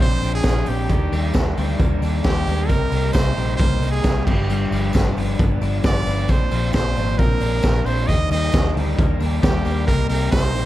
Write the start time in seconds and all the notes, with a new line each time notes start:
Already playing: A#2 D3 F3 D4
0.00 A#1 F3 C4 D4 C5
0.20 A#1 D3 F3 C4 D4, open hi-hat, tambourine
0.35 G#4
0.43 F3, kick, snare, closed hi-hat, tambourine
0.54 F3 C4 D4
0.66 A#1 C4 G4, open hi-hat, tambourine
0.89 D#2 D#3 G3 A#3 D4, kick, closed hi-hat, tambourine
1.11 D#2 D#3 G3 A#3 D4, open hi-hat, tambourine
1.34 D#2 D4, kick, snare, closed hi-hat, tambourine
1.56 D2 D#3 G3 A#3 D4, open hi-hat, tambourine
1.78 D#2 D#3 G3 A#3 D4, kick, closed hi-hat, tambourine
2.01 D#2 D#3 G3 A#3 D4, open hi-hat, tambourine
2.24 D#2 G3 G4, kick, snare, closed hi-hat, tambourine
2.34 G3 A#3 D4
2.47 D#2 G#3, open hi-hat, tambourine
2.59 A#3
2.68 C2 C3 G3 A#3 D#4 A#4, kick, closed hi-hat, tambourine
2.90 C2 C3 G3 A#3 D#4, open hi-hat, tambourine
3.13 C2 D#4 C5, kick, snare, closed hi-hat, tambourine
3.35 A#1 C3 G3 A#3 D#4, open hi-hat
3.57 C2 C3 G3 A#3 D#4 C5, kick, closed hi-hat
3.80 C2 C3 G3 A#3, open hi-hat, tambourine
3.84 D#4
3.91 G#4
4.04 G3, kick, snare, closed hi-hat, tambourine
4.15 G3 A#3 D#4
4.25 G1 G2 D3 F3 B3 D4 G4, kick, tambourine, crash
4.50 G2, closed hi-hat, tambourine
4.71 G1 D3 F3 B3 D4, open hi-hat, tambourine
4.93 G1 C4, kick, snare, closed hi-hat, tambourine
5.07 D4
5.16 G1 D3 F3 B3 D4, open hi-hat, tambourine
5.39 G1 D3 F3 B3 D4, kick, closed hi-hat, tambourine
5.61 G1 D3 F3 B3 D4, open hi-hat, tambourine
5.83 G1 F3 D5, kick, snare, closed hi-hat, tambourine
5.95 F3 B3 D4
6.07 G1 B3, open hi-hat, tambourine
6.28 A#1 A#2 D3 F3 C4 D4 C5, kick, closed hi-hat, tambourine
6.51 A#1 D3 F3 C4 D4, open hi-hat, tambourine
6.73 A#1 D4 C5, kick, snare, closed hi-hat, tambourine
6.95 G#1 D3 F3 C4 D4, open hi-hat, tambourine
7.18 A#1 D3 F3 C4 D4 A#4, kick, closed hi-hat, tambourine
7.41 A#1 D3 F3 C4 D4, open hi-hat, tambourine
7.63 A#1 F3, kick, snare, closed hi-hat, tambourine
7.74 F3 C4 D4
7.85 A#1 C4 C5, open hi-hat, tambourine
8.07 D#2 D#3 G3 A#3 D4 D#5, kick, closed hi-hat, tambourine
8.30 D#2 D#3 G3 A#3 D#5, open hi-hat, tambourine
8.52 D#2 D4, kick, snare, closed hi-hat, tambourine
8.76 D2 D#3 G3 A#3 D4, open hi-hat
8.98 D#2 D#3 G3 A#3 D4, kick, closed hi-hat, tambourine
9.20 D#2 D#3 G3 A#3 D4, open hi-hat, tambourine
9.42 D#2 G3 G4, kick, snare, closed hi-hat, tambourine
9.54 G3 A#3 D4
9.65 D#2 A#3, open hi-hat, tambourine
9.87 C2 C3 G3 A#3 D#4 A#4, kick, closed hi-hat, tambourine
10.09 C2 C3 G3 A#3 D#4 A#4, open hi-hat, tambourine
10.32 C2 D#4 C5, kick, snare, closed hi-hat, tambourine
10.53 A#1 C3 G3 A#3 D#4, open hi-hat, tambourine